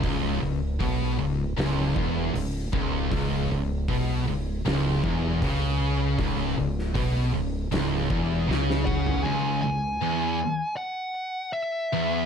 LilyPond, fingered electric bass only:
\new Staff \with { instrumentName = "Fingered electric bass" } { \clef bass \time 4/4 \key cis \minor \tempo 4 = 78 cis,,8 cis,,8 b,,8 cis,,8 cis,,8 e,,8 cis,,8 cis,,8 | cis,,8 cis,,8 b,,8 cis,,8 cis,,8 e,,8 cis,4 | cis,,8 cis,,8 b,,8 cis,,8 cis,,8 e,,8 cis,4 | r1 | }